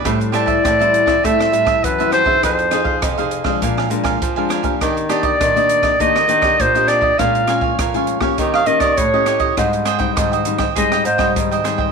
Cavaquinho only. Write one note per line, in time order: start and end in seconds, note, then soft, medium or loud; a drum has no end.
0.04 0.19 G4 soft
0.04 0.19 C5 medium
0.04 0.19 E5 soft
0.04 0.20 A5 medium
0.20 muted cavaquinho stroke soft
0.32 0.47 G4 medium
0.32 0.47 C5 medium
0.32 0.46 E5 medium
0.32 0.45 A5 medium
0.46 0.63 C5 medium
0.46 0.62 E5 medium
0.46 0.62 A5 medium
0.64 0.78 G4 soft
0.64 0.79 C5 medium
0.64 0.79 E5 soft
0.64 0.78 A5 medium
0.79 1.07 C5 medium
0.79 1.06 E5 medium
0.79 1.05 A5 medium
1.06 1.23 C5 medium
1.06 1.22 E5 medium
1.06 1.21 A5 medium
1.23 1.38 G4 soft
1.23 1.38 C5 medium
1.23 1.38 E5 soft
1.23 1.38 A5 medium
1.39 1.52 C5 soft
1.39 1.52 E5 medium
1.39 1.52 A5 medium
1.52 muted cavaquinho stroke soft
1.65 1.97 C5 medium
1.65 1.96 E5 medium
1.65 1.96 A5 medium
1.98 2.10 C5 medium
1.98 2.11 E5 medium
1.98 2.12 A5 medium
2.11 2.26 G4 soft
2.11 2.26 C5 medium
2.11 2.25 E5 soft
2.11 2.24 A5 medium
2.25 2.42 C5 medium
2.25 2.41 E5 medium
2.25 2.40 A5 medium
2.43 2.57 D#4 soft
2.43 2.57 G#4 medium
2.43 2.58 C5 medium
2.43 2.58 F5 medium
2.59 muted cavaquinho stroke soft
2.71 2.86 D#4 medium
2.71 2.85 G#4 medium
2.71 2.84 C5 medium
2.71 2.83 F5 medium
2.84 3.01 G#4 medium
2.84 3.00 C5 medium
2.84 3.00 F5 medium
3.02 3.16 D#4 soft
3.02 3.16 G#4 medium
3.02 3.17 C5 medium
3.02 3.16 F5 medium
3.18 3.45 G#4 medium
3.18 3.44 C5 medium
3.18 3.43 F5 medium
3.44 3.61 G#4 medium
3.44 3.60 C5 medium
3.44 3.60 F5 medium
3.62 3.76 D4 medium
3.62 3.76 A#4 medium
3.62 3.77 F5 medium
3.62 3.76 G#5 soft
3.77 3.89 A#4 soft
3.77 3.90 F5 medium
3.77 3.90 G#5 medium
3.90 muted cavaquinho stroke soft
4.04 4.35 A#4 medium
4.04 4.34 F5 medium
4.04 4.34 G#5 medium
4.36 4.49 A#4 medium
4.36 4.49 F5 medium
4.36 4.50 G#5 medium
4.49 4.64 D4 medium
4.49 4.64 A#4 medium
4.49 4.63 F5 medium
4.49 4.62 G#5 medium
4.63 4.79 A#4 medium
4.63 4.79 F5 medium
4.63 4.79 G#5 medium
4.80 4.95 D4 soft
4.80 4.95 G4 soft
4.80 4.96 D5 medium
4.80 4.95 D#5 medium
4.97 muted cavaquinho stroke soft
5.09 5.24 D4 medium
5.09 5.24 G4 medium
5.09 5.22 D5 medium
5.09 5.23 D#5 medium
5.23 5.39 G4 medium
5.23 5.38 D5 medium
5.23 5.39 D#5 medium
5.40 5.54 D4 medium
5.40 5.55 G4 soft
5.40 5.55 D5 medium
5.40 5.55 D#5 medium
5.56 5.83 G4 medium
5.56 5.81 D5 medium
5.56 5.82 D#5 medium
5.83 5.99 G4 medium
5.83 5.98 D5 medium
5.83 5.98 D#5 medium
6.00 6.14 D4 soft
6.00 6.14 G4 soft
6.00 6.14 D5 medium
6.00 6.15 D#5 medium
6.15 6.27 G4 soft
6.15 6.28 D5 medium
6.15 6.27 D#5 medium
6.28 muted cavaquinho stroke soft
6.42 6.73 G4 medium
6.42 6.72 D5 medium
6.42 6.73 D#5 medium
6.75 6.87 G4 medium
6.75 6.88 D5 medium
6.75 6.87 D#5 medium
6.87 7.02 D4 medium
6.87 7.02 G4 medium
6.87 7.00 D5 medium
6.87 7.01 D#5 medium
7.01 7.18 G4 medium
7.01 7.17 D5 medium
7.01 7.17 D#5 medium
7.18 7.33 A#4 medium
7.18 7.33 C#5 soft
7.18 7.33 F5 medium
7.18 7.34 G#5 medium
7.35 muted cavaquinho stroke soft
7.47 7.62 A#4 medium
7.47 7.62 C#5 medium
7.47 7.61 F5 medium
7.47 7.60 G#5 medium
7.61 7.78 C#5 medium
7.61 7.77 F5 medium
7.61 7.76 G#5 medium
7.79 7.93 A#4 medium
7.79 7.93 C#5 medium
7.79 7.93 F5 medium
7.79 7.94 G#5 medium
7.95 8.22 C#5 soft
7.95 8.21 F5 medium
7.95 8.20 G#5 medium
8.21 8.37 C#5 medium
8.21 8.37 F5 medium
8.21 8.36 G#5 medium
8.39 8.52 D#4 medium
8.39 8.53 G4 medium
8.39 8.53 C#5 medium
8.39 8.53 D#5 soft
8.54 8.67 G4 medium
8.54 8.67 C#5 medium
8.54 8.68 D#5 medium
8.68 muted cavaquinho stroke soft
8.81 9.12 G4 medium
8.81 9.11 C#5 medium
8.81 9.11 D#5 medium
9.14 9.26 G4 soft
9.14 9.26 C#5 medium
9.14 9.27 D#5 medium
9.26 9.41 D#4 medium
9.26 9.41 G4 medium
9.26 9.40 C#5 medium
9.26 9.39 D#5 medium
9.40 9.56 G4 medium
9.40 9.56 C#5 medium
9.40 9.55 D#5 medium
9.57 9.71 G#4 soft
9.57 9.71 C5 medium
9.57 9.72 D#5 medium
9.57 9.72 G5 medium
9.73 muted cavaquinho stroke soft
9.85 10.00 G#4 medium
9.85 9.99 C5 medium
9.85 9.99 D#5 medium
9.85 9.97 G5 medium
9.98 10.15 C5 medium
9.98 10.15 D#5 medium
9.98 10.14 G5 medium
10.16 10.30 G#4 soft
10.16 10.31 C5 medium
10.16 10.31 D#5 soft
10.16 10.31 G5 medium
10.32 10.59 C5 medium
10.32 10.58 D#5 medium
10.32 10.57 G5 medium
10.58 10.75 C5 medium
10.58 10.74 D#5 medium
10.58 10.74 G5 medium
10.76 10.90 G#4 medium
10.76 10.90 C5 soft
10.76 10.91 D#5 medium
10.76 10.91 G5 medium
10.92 11.04 C5 medium
10.92 11.05 D#5 medium
10.92 11.05 G5 medium
11.05 muted cavaquinho stroke soft
11.18 11.50 C5 medium
11.18 11.49 D#5 medium
11.18 11.48 G5 medium
11.51 11.64 C5 medium
11.51 11.64 D#5 medium
11.51 11.65 G5 medium
11.64 11.79 G#4 medium
11.64 11.79 C5 medium
11.64 11.78 D#5 soft
11.64 11.77 G5 medium
11.78 11.92 C5 medium
11.78 11.92 D#5 medium
11.78 11.92 G5 medium